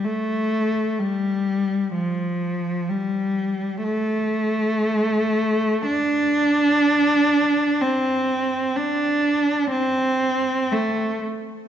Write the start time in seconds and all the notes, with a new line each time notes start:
0.04 A3
0.99 G3
1.94 F3
2.90 G3
3.83 A3
5.86 D4
7.81 C4
8.77 D4
9.71 C4
10.72 A3